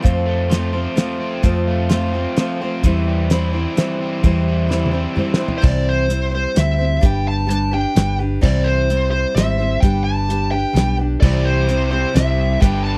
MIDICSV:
0, 0, Header, 1, 6, 480
1, 0, Start_track
1, 0, Key_signature, 0, "major"
1, 0, Tempo, 465839
1, 45, Time_signature, 3, 2, 24, 8
1, 13374, End_track
2, 0, Start_track
2, 0, Title_t, "Lead electric guitar"
2, 0, Program_c, 0, 29
2, 5748, Note_on_c, 0, 72, 65
2, 5810, Note_off_c, 0, 72, 0
2, 5812, Note_on_c, 0, 74, 87
2, 6059, Note_off_c, 0, 74, 0
2, 6067, Note_on_c, 0, 72, 86
2, 6506, Note_off_c, 0, 72, 0
2, 6540, Note_on_c, 0, 72, 85
2, 6759, Note_off_c, 0, 72, 0
2, 6780, Note_on_c, 0, 76, 96
2, 7269, Note_off_c, 0, 76, 0
2, 7272, Note_on_c, 0, 79, 111
2, 7485, Note_off_c, 0, 79, 0
2, 7502, Note_on_c, 0, 81, 100
2, 7711, Note_off_c, 0, 81, 0
2, 7723, Note_on_c, 0, 81, 101
2, 7971, Note_off_c, 0, 81, 0
2, 7975, Note_on_c, 0, 79, 103
2, 8419, Note_off_c, 0, 79, 0
2, 8683, Note_on_c, 0, 74, 90
2, 8902, Note_on_c, 0, 72, 90
2, 8933, Note_off_c, 0, 74, 0
2, 9361, Note_off_c, 0, 72, 0
2, 9385, Note_on_c, 0, 72, 90
2, 9619, Note_off_c, 0, 72, 0
2, 9631, Note_on_c, 0, 76, 97
2, 10103, Note_on_c, 0, 79, 104
2, 10134, Note_off_c, 0, 76, 0
2, 10338, Note_off_c, 0, 79, 0
2, 10346, Note_on_c, 0, 81, 114
2, 10829, Note_off_c, 0, 81, 0
2, 10833, Note_on_c, 0, 79, 103
2, 11286, Note_off_c, 0, 79, 0
2, 11545, Note_on_c, 0, 74, 87
2, 11795, Note_on_c, 0, 72, 86
2, 11803, Note_off_c, 0, 74, 0
2, 12262, Note_off_c, 0, 72, 0
2, 12274, Note_on_c, 0, 72, 86
2, 12503, Note_off_c, 0, 72, 0
2, 12518, Note_on_c, 0, 76, 94
2, 12968, Note_off_c, 0, 76, 0
2, 12994, Note_on_c, 0, 79, 109
2, 13225, Note_off_c, 0, 79, 0
2, 13229, Note_on_c, 0, 81, 115
2, 13374, Note_off_c, 0, 81, 0
2, 13374, End_track
3, 0, Start_track
3, 0, Title_t, "Steel-string acoustic guitar"
3, 0, Program_c, 1, 25
3, 24, Note_on_c, 1, 53, 83
3, 33, Note_on_c, 1, 57, 92
3, 41, Note_on_c, 1, 60, 89
3, 45, Note_on_c, 1, 65, 91
3, 46, Note_on_c, 1, 72, 97
3, 495, Note_off_c, 1, 57, 0
3, 507, Note_on_c, 1, 57, 60
3, 512, Note_off_c, 1, 60, 0
3, 515, Note_off_c, 1, 53, 0
3, 516, Note_off_c, 1, 65, 0
3, 517, Note_on_c, 1, 60, 68
3, 529, Note_on_c, 1, 65, 70
3, 530, Note_off_c, 1, 72, 0
3, 534, Note_on_c, 1, 72, 71
3, 739, Note_off_c, 1, 72, 0
3, 750, Note_off_c, 1, 65, 0
3, 751, Note_on_c, 1, 72, 54
3, 757, Note_off_c, 1, 57, 0
3, 762, Note_off_c, 1, 60, 0
3, 763, Note_on_c, 1, 65, 46
3, 782, Note_on_c, 1, 60, 46
3, 987, Note_on_c, 1, 57, 68
3, 989, Note_off_c, 1, 60, 0
3, 997, Note_off_c, 1, 65, 0
3, 999, Note_off_c, 1, 72, 0
3, 1002, Note_on_c, 1, 60, 67
3, 1009, Note_on_c, 1, 65, 61
3, 1021, Note_on_c, 1, 72, 70
3, 1469, Note_off_c, 1, 57, 0
3, 1470, Note_on_c, 1, 53, 87
3, 1479, Note_off_c, 1, 65, 0
3, 1481, Note_on_c, 1, 57, 82
3, 1485, Note_off_c, 1, 60, 0
3, 1489, Note_on_c, 1, 60, 84
3, 1491, Note_on_c, 1, 65, 89
3, 1493, Note_off_c, 1, 72, 0
3, 1497, Note_on_c, 1, 72, 83
3, 1950, Note_off_c, 1, 57, 0
3, 1960, Note_off_c, 1, 53, 0
3, 1962, Note_on_c, 1, 57, 67
3, 1968, Note_off_c, 1, 60, 0
3, 1970, Note_off_c, 1, 65, 0
3, 1972, Note_on_c, 1, 60, 71
3, 1988, Note_on_c, 1, 65, 79
3, 1994, Note_off_c, 1, 72, 0
3, 1998, Note_on_c, 1, 72, 70
3, 2188, Note_off_c, 1, 72, 0
3, 2200, Note_on_c, 1, 72, 51
3, 2201, Note_off_c, 1, 65, 0
3, 2206, Note_off_c, 1, 57, 0
3, 2211, Note_off_c, 1, 60, 0
3, 2214, Note_on_c, 1, 65, 48
3, 2231, Note_on_c, 1, 60, 42
3, 2439, Note_off_c, 1, 60, 0
3, 2439, Note_on_c, 1, 57, 61
3, 2445, Note_off_c, 1, 72, 0
3, 2447, Note_off_c, 1, 65, 0
3, 2451, Note_on_c, 1, 60, 70
3, 2459, Note_on_c, 1, 65, 67
3, 2473, Note_on_c, 1, 72, 68
3, 2682, Note_off_c, 1, 72, 0
3, 2684, Note_off_c, 1, 57, 0
3, 2690, Note_off_c, 1, 60, 0
3, 2694, Note_off_c, 1, 65, 0
3, 2694, Note_on_c, 1, 72, 61
3, 2710, Note_on_c, 1, 65, 51
3, 2723, Note_on_c, 1, 60, 48
3, 2922, Note_on_c, 1, 52, 88
3, 2923, Note_off_c, 1, 60, 0
3, 2932, Note_off_c, 1, 72, 0
3, 2935, Note_on_c, 1, 60, 92
3, 2937, Note_on_c, 1, 55, 87
3, 2940, Note_off_c, 1, 65, 0
3, 2944, Note_on_c, 1, 72, 92
3, 2946, Note_on_c, 1, 64, 99
3, 3400, Note_off_c, 1, 55, 0
3, 3404, Note_on_c, 1, 55, 62
3, 3406, Note_off_c, 1, 60, 0
3, 3410, Note_on_c, 1, 60, 67
3, 3417, Note_off_c, 1, 64, 0
3, 3421, Note_on_c, 1, 64, 73
3, 3427, Note_off_c, 1, 72, 0
3, 3432, Note_on_c, 1, 72, 77
3, 3622, Note_off_c, 1, 72, 0
3, 3635, Note_on_c, 1, 72, 52
3, 3641, Note_off_c, 1, 64, 0
3, 3648, Note_off_c, 1, 55, 0
3, 3650, Note_off_c, 1, 60, 0
3, 3653, Note_on_c, 1, 64, 49
3, 3672, Note_on_c, 1, 60, 44
3, 3871, Note_on_c, 1, 55, 65
3, 3874, Note_off_c, 1, 60, 0
3, 3879, Note_off_c, 1, 64, 0
3, 3883, Note_off_c, 1, 72, 0
3, 3886, Note_on_c, 1, 60, 65
3, 3892, Note_on_c, 1, 64, 69
3, 3900, Note_on_c, 1, 72, 65
3, 4357, Note_off_c, 1, 52, 0
3, 4361, Note_on_c, 1, 52, 77
3, 4363, Note_off_c, 1, 55, 0
3, 4364, Note_off_c, 1, 60, 0
3, 4368, Note_on_c, 1, 55, 87
3, 4368, Note_on_c, 1, 60, 96
3, 4375, Note_off_c, 1, 64, 0
3, 4378, Note_off_c, 1, 72, 0
3, 4380, Note_on_c, 1, 64, 88
3, 4382, Note_on_c, 1, 72, 92
3, 4818, Note_off_c, 1, 55, 0
3, 4830, Note_on_c, 1, 55, 65
3, 4835, Note_off_c, 1, 60, 0
3, 4843, Note_off_c, 1, 64, 0
3, 4847, Note_off_c, 1, 52, 0
3, 4847, Note_on_c, 1, 60, 65
3, 4852, Note_off_c, 1, 72, 0
3, 4856, Note_on_c, 1, 64, 68
3, 4865, Note_on_c, 1, 72, 67
3, 5050, Note_off_c, 1, 72, 0
3, 5062, Note_on_c, 1, 72, 53
3, 5067, Note_off_c, 1, 64, 0
3, 5079, Note_on_c, 1, 64, 51
3, 5080, Note_off_c, 1, 60, 0
3, 5081, Note_off_c, 1, 55, 0
3, 5092, Note_on_c, 1, 60, 47
3, 5308, Note_off_c, 1, 60, 0
3, 5311, Note_on_c, 1, 55, 61
3, 5317, Note_off_c, 1, 72, 0
3, 5321, Note_on_c, 1, 60, 63
3, 5326, Note_off_c, 1, 64, 0
3, 5339, Note_on_c, 1, 64, 68
3, 5348, Note_on_c, 1, 72, 71
3, 5534, Note_off_c, 1, 72, 0
3, 5546, Note_on_c, 1, 72, 56
3, 5551, Note_off_c, 1, 64, 0
3, 5562, Note_off_c, 1, 55, 0
3, 5563, Note_off_c, 1, 60, 0
3, 5564, Note_on_c, 1, 64, 53
3, 5576, Note_on_c, 1, 60, 48
3, 5784, Note_off_c, 1, 60, 0
3, 5785, Note_on_c, 1, 48, 78
3, 5790, Note_on_c, 1, 55, 81
3, 5791, Note_on_c, 1, 52, 82
3, 5793, Note_off_c, 1, 64, 0
3, 5796, Note_on_c, 1, 60, 85
3, 5799, Note_off_c, 1, 72, 0
3, 5805, Note_on_c, 1, 64, 94
3, 5810, Note_on_c, 1, 72, 85
3, 6257, Note_off_c, 1, 55, 0
3, 6261, Note_off_c, 1, 60, 0
3, 6261, Note_on_c, 1, 55, 57
3, 6267, Note_off_c, 1, 64, 0
3, 6273, Note_on_c, 1, 60, 65
3, 6278, Note_off_c, 1, 48, 0
3, 6280, Note_on_c, 1, 64, 61
3, 6281, Note_off_c, 1, 52, 0
3, 6282, Note_off_c, 1, 72, 0
3, 6294, Note_on_c, 1, 72, 72
3, 6493, Note_off_c, 1, 72, 0
3, 6502, Note_off_c, 1, 64, 0
3, 6505, Note_on_c, 1, 72, 53
3, 6514, Note_on_c, 1, 64, 49
3, 6516, Note_off_c, 1, 55, 0
3, 6517, Note_off_c, 1, 60, 0
3, 6529, Note_on_c, 1, 60, 43
3, 6539, Note_on_c, 1, 55, 38
3, 6729, Note_off_c, 1, 55, 0
3, 6741, Note_on_c, 1, 55, 52
3, 6744, Note_off_c, 1, 60, 0
3, 6756, Note_on_c, 1, 60, 64
3, 6757, Note_off_c, 1, 64, 0
3, 6758, Note_off_c, 1, 72, 0
3, 6769, Note_on_c, 1, 64, 61
3, 6771, Note_on_c, 1, 72, 62
3, 6981, Note_off_c, 1, 72, 0
3, 6993, Note_off_c, 1, 64, 0
3, 6993, Note_on_c, 1, 72, 54
3, 6996, Note_off_c, 1, 55, 0
3, 7004, Note_off_c, 1, 60, 0
3, 7005, Note_on_c, 1, 64, 47
3, 7017, Note_on_c, 1, 60, 51
3, 7031, Note_on_c, 1, 55, 41
3, 7210, Note_off_c, 1, 55, 0
3, 7222, Note_off_c, 1, 60, 0
3, 7223, Note_on_c, 1, 55, 79
3, 7226, Note_on_c, 1, 62, 79
3, 7234, Note_off_c, 1, 64, 0
3, 7238, Note_on_c, 1, 67, 88
3, 7240, Note_off_c, 1, 72, 0
3, 7245, Note_on_c, 1, 71, 82
3, 7690, Note_off_c, 1, 55, 0
3, 7694, Note_on_c, 1, 55, 65
3, 7697, Note_off_c, 1, 62, 0
3, 7710, Note_on_c, 1, 62, 69
3, 7715, Note_off_c, 1, 67, 0
3, 7716, Note_off_c, 1, 71, 0
3, 7719, Note_on_c, 1, 67, 72
3, 7728, Note_on_c, 1, 71, 61
3, 7935, Note_off_c, 1, 71, 0
3, 7947, Note_on_c, 1, 71, 54
3, 7952, Note_off_c, 1, 55, 0
3, 7955, Note_off_c, 1, 67, 0
3, 7960, Note_off_c, 1, 62, 0
3, 7968, Note_on_c, 1, 67, 45
3, 7979, Note_on_c, 1, 62, 45
3, 8187, Note_off_c, 1, 62, 0
3, 8190, Note_on_c, 1, 55, 58
3, 8198, Note_off_c, 1, 71, 0
3, 8200, Note_on_c, 1, 62, 59
3, 8206, Note_off_c, 1, 67, 0
3, 8219, Note_on_c, 1, 67, 61
3, 8225, Note_on_c, 1, 71, 69
3, 8428, Note_off_c, 1, 71, 0
3, 8440, Note_off_c, 1, 55, 0
3, 8440, Note_off_c, 1, 67, 0
3, 8440, Note_on_c, 1, 71, 51
3, 8445, Note_off_c, 1, 62, 0
3, 8452, Note_on_c, 1, 67, 53
3, 8468, Note_on_c, 1, 62, 45
3, 8668, Note_on_c, 1, 48, 86
3, 8671, Note_on_c, 1, 52, 88
3, 8674, Note_off_c, 1, 62, 0
3, 8678, Note_on_c, 1, 60, 90
3, 8680, Note_on_c, 1, 55, 88
3, 8682, Note_off_c, 1, 67, 0
3, 8685, Note_off_c, 1, 71, 0
3, 8686, Note_on_c, 1, 64, 90
3, 8690, Note_on_c, 1, 72, 85
3, 9158, Note_off_c, 1, 48, 0
3, 9160, Note_off_c, 1, 52, 0
3, 9163, Note_off_c, 1, 55, 0
3, 9163, Note_off_c, 1, 60, 0
3, 9167, Note_off_c, 1, 64, 0
3, 9167, Note_on_c, 1, 55, 68
3, 9169, Note_off_c, 1, 72, 0
3, 9180, Note_on_c, 1, 60, 62
3, 9190, Note_on_c, 1, 64, 66
3, 9199, Note_on_c, 1, 72, 65
3, 9626, Note_off_c, 1, 55, 0
3, 9630, Note_on_c, 1, 55, 62
3, 9633, Note_off_c, 1, 60, 0
3, 9639, Note_off_c, 1, 64, 0
3, 9645, Note_on_c, 1, 60, 61
3, 9650, Note_off_c, 1, 72, 0
3, 9652, Note_on_c, 1, 64, 64
3, 9663, Note_on_c, 1, 72, 72
3, 9860, Note_off_c, 1, 72, 0
3, 9872, Note_on_c, 1, 72, 51
3, 9875, Note_off_c, 1, 64, 0
3, 9879, Note_off_c, 1, 55, 0
3, 9887, Note_off_c, 1, 60, 0
3, 9888, Note_on_c, 1, 64, 52
3, 9901, Note_on_c, 1, 60, 50
3, 9902, Note_on_c, 1, 55, 47
3, 10113, Note_off_c, 1, 55, 0
3, 10120, Note_off_c, 1, 72, 0
3, 10126, Note_on_c, 1, 55, 82
3, 10128, Note_off_c, 1, 64, 0
3, 10134, Note_off_c, 1, 60, 0
3, 10138, Note_on_c, 1, 62, 87
3, 10142, Note_on_c, 1, 67, 89
3, 10150, Note_on_c, 1, 71, 91
3, 10595, Note_off_c, 1, 55, 0
3, 10600, Note_on_c, 1, 55, 58
3, 10605, Note_off_c, 1, 62, 0
3, 10617, Note_on_c, 1, 62, 64
3, 10619, Note_off_c, 1, 67, 0
3, 10619, Note_off_c, 1, 71, 0
3, 10624, Note_on_c, 1, 67, 69
3, 10631, Note_on_c, 1, 71, 69
3, 10815, Note_off_c, 1, 71, 0
3, 10827, Note_on_c, 1, 71, 54
3, 10837, Note_off_c, 1, 67, 0
3, 10843, Note_off_c, 1, 55, 0
3, 10846, Note_off_c, 1, 62, 0
3, 10849, Note_on_c, 1, 67, 46
3, 10859, Note_on_c, 1, 62, 45
3, 11057, Note_on_c, 1, 55, 60
3, 11064, Note_off_c, 1, 62, 0
3, 11070, Note_off_c, 1, 67, 0
3, 11076, Note_on_c, 1, 62, 66
3, 11077, Note_off_c, 1, 71, 0
3, 11082, Note_on_c, 1, 67, 64
3, 11090, Note_on_c, 1, 71, 66
3, 11301, Note_off_c, 1, 71, 0
3, 11312, Note_off_c, 1, 55, 0
3, 11314, Note_on_c, 1, 71, 48
3, 11316, Note_off_c, 1, 67, 0
3, 11321, Note_off_c, 1, 62, 0
3, 11329, Note_on_c, 1, 67, 50
3, 11345, Note_on_c, 1, 62, 44
3, 11560, Note_off_c, 1, 71, 0
3, 11564, Note_on_c, 1, 52, 85
3, 11565, Note_on_c, 1, 48, 85
3, 11566, Note_off_c, 1, 62, 0
3, 11566, Note_on_c, 1, 55, 90
3, 11567, Note_off_c, 1, 67, 0
3, 11570, Note_on_c, 1, 60, 86
3, 11576, Note_on_c, 1, 64, 89
3, 11576, Note_on_c, 1, 72, 86
3, 12029, Note_off_c, 1, 55, 0
3, 12034, Note_on_c, 1, 55, 66
3, 12039, Note_off_c, 1, 60, 0
3, 12045, Note_off_c, 1, 48, 0
3, 12045, Note_off_c, 1, 52, 0
3, 12046, Note_off_c, 1, 64, 0
3, 12051, Note_off_c, 1, 72, 0
3, 12051, Note_on_c, 1, 60, 65
3, 12058, Note_on_c, 1, 64, 63
3, 12069, Note_on_c, 1, 72, 66
3, 12248, Note_off_c, 1, 72, 0
3, 12259, Note_off_c, 1, 64, 0
3, 12261, Note_on_c, 1, 72, 48
3, 12271, Note_off_c, 1, 60, 0
3, 12272, Note_on_c, 1, 64, 51
3, 12280, Note_off_c, 1, 55, 0
3, 12283, Note_on_c, 1, 60, 44
3, 12290, Note_on_c, 1, 55, 41
3, 12490, Note_off_c, 1, 55, 0
3, 12501, Note_off_c, 1, 60, 0
3, 12503, Note_on_c, 1, 55, 58
3, 12510, Note_off_c, 1, 64, 0
3, 12513, Note_off_c, 1, 72, 0
3, 12514, Note_on_c, 1, 60, 67
3, 12522, Note_on_c, 1, 64, 62
3, 12533, Note_on_c, 1, 72, 64
3, 12983, Note_off_c, 1, 55, 0
3, 12987, Note_on_c, 1, 55, 79
3, 12995, Note_off_c, 1, 60, 0
3, 12999, Note_off_c, 1, 64, 0
3, 12999, Note_on_c, 1, 62, 78
3, 13003, Note_on_c, 1, 67, 83
3, 13004, Note_off_c, 1, 72, 0
3, 13008, Note_on_c, 1, 71, 93
3, 13374, Note_off_c, 1, 55, 0
3, 13374, Note_off_c, 1, 62, 0
3, 13374, Note_off_c, 1, 67, 0
3, 13374, Note_off_c, 1, 71, 0
3, 13374, End_track
4, 0, Start_track
4, 0, Title_t, "Overdriven electric guitar"
4, 0, Program_c, 2, 29
4, 0, Note_on_c, 2, 60, 68
4, 31, Note_on_c, 2, 41, 75
4, 267, Note_on_c, 2, 57, 66
4, 746, Note_off_c, 2, 60, 0
4, 1009, Note_on_c, 2, 53, 70
4, 1236, Note_on_c, 2, 60, 68
4, 1240, Note_off_c, 2, 41, 0
4, 1471, Note_on_c, 2, 41, 72
4, 1478, Note_off_c, 2, 57, 0
4, 1723, Note_on_c, 2, 57, 70
4, 2185, Note_off_c, 2, 60, 0
4, 2189, Note_on_c, 2, 60, 67
4, 2210, Note_off_c, 2, 53, 0
4, 2439, Note_on_c, 2, 53, 73
4, 2681, Note_off_c, 2, 41, 0
4, 2683, Note_off_c, 2, 60, 0
4, 2920, Note_off_c, 2, 53, 0
4, 2927, Note_off_c, 2, 57, 0
4, 3172, Note_on_c, 2, 55, 65
4, 3889, Note_on_c, 2, 52, 67
4, 4142, Note_on_c, 2, 60, 67
4, 4365, Note_off_c, 2, 52, 0
4, 4608, Note_off_c, 2, 55, 0
4, 4612, Note_on_c, 2, 55, 68
4, 5079, Note_off_c, 2, 60, 0
4, 5334, Note_on_c, 2, 52, 70
4, 5812, Note_off_c, 2, 55, 0
4, 5813, Note_off_c, 2, 52, 0
4, 11583, Note_on_c, 2, 67, 115
4, 12994, Note_on_c, 2, 43, 90
4, 13003, Note_on_c, 2, 50, 100
4, 13016, Note_on_c, 2, 59, 102
4, 13018, Note_off_c, 2, 67, 0
4, 13374, Note_off_c, 2, 43, 0
4, 13374, Note_off_c, 2, 50, 0
4, 13374, Note_off_c, 2, 59, 0
4, 13374, End_track
5, 0, Start_track
5, 0, Title_t, "Fingered electric bass"
5, 0, Program_c, 3, 33
5, 51, Note_on_c, 3, 41, 91
5, 887, Note_off_c, 3, 41, 0
5, 1481, Note_on_c, 3, 41, 87
5, 2322, Note_off_c, 3, 41, 0
5, 2922, Note_on_c, 3, 40, 96
5, 3764, Note_off_c, 3, 40, 0
5, 4363, Note_on_c, 3, 40, 93
5, 5204, Note_off_c, 3, 40, 0
5, 5810, Note_on_c, 3, 36, 89
5, 6648, Note_off_c, 3, 36, 0
5, 6769, Note_on_c, 3, 38, 96
5, 7188, Note_off_c, 3, 38, 0
5, 7241, Note_on_c, 3, 31, 96
5, 8081, Note_off_c, 3, 31, 0
5, 8203, Note_on_c, 3, 31, 101
5, 8624, Note_off_c, 3, 31, 0
5, 8685, Note_on_c, 3, 36, 95
5, 9523, Note_off_c, 3, 36, 0
5, 9638, Note_on_c, 3, 32, 99
5, 10061, Note_off_c, 3, 32, 0
5, 10120, Note_on_c, 3, 31, 96
5, 10960, Note_off_c, 3, 31, 0
5, 11070, Note_on_c, 3, 35, 96
5, 11496, Note_off_c, 3, 35, 0
5, 11566, Note_on_c, 3, 36, 86
5, 12403, Note_off_c, 3, 36, 0
5, 12520, Note_on_c, 3, 36, 102
5, 12941, Note_off_c, 3, 36, 0
5, 13007, Note_on_c, 3, 31, 91
5, 13374, Note_off_c, 3, 31, 0
5, 13374, End_track
6, 0, Start_track
6, 0, Title_t, "Drums"
6, 49, Note_on_c, 9, 36, 106
6, 55, Note_on_c, 9, 42, 64
6, 152, Note_off_c, 9, 36, 0
6, 158, Note_off_c, 9, 42, 0
6, 529, Note_on_c, 9, 42, 66
6, 540, Note_on_c, 9, 38, 79
6, 632, Note_off_c, 9, 42, 0
6, 643, Note_off_c, 9, 38, 0
6, 999, Note_on_c, 9, 42, 60
6, 1010, Note_on_c, 9, 38, 84
6, 1102, Note_off_c, 9, 42, 0
6, 1113, Note_off_c, 9, 38, 0
6, 1477, Note_on_c, 9, 42, 60
6, 1481, Note_on_c, 9, 36, 107
6, 1580, Note_off_c, 9, 42, 0
6, 1584, Note_off_c, 9, 36, 0
6, 1954, Note_on_c, 9, 42, 58
6, 1964, Note_on_c, 9, 38, 84
6, 2057, Note_off_c, 9, 42, 0
6, 2067, Note_off_c, 9, 38, 0
6, 2438, Note_on_c, 9, 42, 58
6, 2448, Note_on_c, 9, 38, 81
6, 2541, Note_off_c, 9, 42, 0
6, 2551, Note_off_c, 9, 38, 0
6, 2921, Note_on_c, 9, 42, 57
6, 2924, Note_on_c, 9, 36, 107
6, 3024, Note_off_c, 9, 42, 0
6, 3027, Note_off_c, 9, 36, 0
6, 3401, Note_on_c, 9, 42, 60
6, 3411, Note_on_c, 9, 38, 87
6, 3504, Note_off_c, 9, 42, 0
6, 3514, Note_off_c, 9, 38, 0
6, 3887, Note_on_c, 9, 42, 62
6, 3898, Note_on_c, 9, 38, 85
6, 3991, Note_off_c, 9, 42, 0
6, 4001, Note_off_c, 9, 38, 0
6, 4366, Note_on_c, 9, 42, 61
6, 4367, Note_on_c, 9, 36, 111
6, 4469, Note_off_c, 9, 42, 0
6, 4470, Note_off_c, 9, 36, 0
6, 4852, Note_on_c, 9, 38, 56
6, 4955, Note_off_c, 9, 38, 0
6, 5004, Note_on_c, 9, 48, 58
6, 5107, Note_off_c, 9, 48, 0
6, 5326, Note_on_c, 9, 45, 67
6, 5429, Note_off_c, 9, 45, 0
6, 5501, Note_on_c, 9, 38, 90
6, 5604, Note_off_c, 9, 38, 0
6, 5651, Note_on_c, 9, 43, 78
6, 5754, Note_off_c, 9, 43, 0
6, 5805, Note_on_c, 9, 49, 113
6, 5808, Note_on_c, 9, 36, 120
6, 5908, Note_off_c, 9, 49, 0
6, 5911, Note_off_c, 9, 36, 0
6, 6287, Note_on_c, 9, 42, 70
6, 6390, Note_off_c, 9, 42, 0
6, 6761, Note_on_c, 9, 42, 72
6, 6771, Note_on_c, 9, 38, 80
6, 6864, Note_off_c, 9, 42, 0
6, 6874, Note_off_c, 9, 38, 0
6, 7240, Note_on_c, 9, 42, 75
6, 7245, Note_on_c, 9, 36, 118
6, 7343, Note_off_c, 9, 42, 0
6, 7348, Note_off_c, 9, 36, 0
6, 7733, Note_on_c, 9, 42, 81
6, 7836, Note_off_c, 9, 42, 0
6, 8205, Note_on_c, 9, 42, 77
6, 8215, Note_on_c, 9, 38, 84
6, 8308, Note_off_c, 9, 42, 0
6, 8318, Note_off_c, 9, 38, 0
6, 8688, Note_on_c, 9, 36, 120
6, 8689, Note_on_c, 9, 49, 100
6, 8791, Note_off_c, 9, 36, 0
6, 8792, Note_off_c, 9, 49, 0
6, 9173, Note_on_c, 9, 42, 72
6, 9276, Note_off_c, 9, 42, 0
6, 9654, Note_on_c, 9, 42, 77
6, 9664, Note_on_c, 9, 38, 94
6, 9757, Note_off_c, 9, 42, 0
6, 9767, Note_off_c, 9, 38, 0
6, 10125, Note_on_c, 9, 42, 70
6, 10126, Note_on_c, 9, 36, 114
6, 10228, Note_off_c, 9, 42, 0
6, 10229, Note_off_c, 9, 36, 0
6, 10614, Note_on_c, 9, 42, 70
6, 10717, Note_off_c, 9, 42, 0
6, 11091, Note_on_c, 9, 42, 72
6, 11101, Note_on_c, 9, 38, 86
6, 11194, Note_off_c, 9, 42, 0
6, 11204, Note_off_c, 9, 38, 0
6, 11564, Note_on_c, 9, 36, 116
6, 11564, Note_on_c, 9, 49, 97
6, 11667, Note_off_c, 9, 36, 0
6, 11667, Note_off_c, 9, 49, 0
6, 12043, Note_on_c, 9, 42, 78
6, 12146, Note_off_c, 9, 42, 0
6, 12527, Note_on_c, 9, 42, 78
6, 12537, Note_on_c, 9, 38, 86
6, 12630, Note_off_c, 9, 42, 0
6, 12640, Note_off_c, 9, 38, 0
6, 13005, Note_on_c, 9, 36, 107
6, 13007, Note_on_c, 9, 42, 83
6, 13108, Note_off_c, 9, 36, 0
6, 13110, Note_off_c, 9, 42, 0
6, 13374, End_track
0, 0, End_of_file